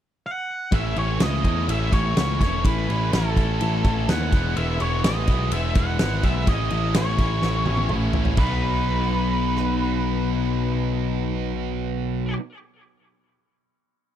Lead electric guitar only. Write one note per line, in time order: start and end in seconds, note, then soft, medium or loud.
0.26 0.75 F#5 loud
0.75 0.98 E5 medium
0.99 1.22 C#5 medium
1.23 1.70 D#5 medium
1.70 1.93 E5 medium
1.93 2.39 C#5 medium
2.40 2.63 C#5 medium
2.65 3.14 B4 medium
3.14 4.12 A4 medium
4.10 4.59 F#5 loud
4.56 4.81 E5 medium
4.82 5.04 C#5 medium
5.05 5.52 D#5 medium
5.53 5.77 E5 medium
5.77 6.26 F#5 medium
6.24 6.47 E5 medium
6.48 6.97 D#5 medium
6.97 7.88 C#5 medium
8.38 12.34 B4 medium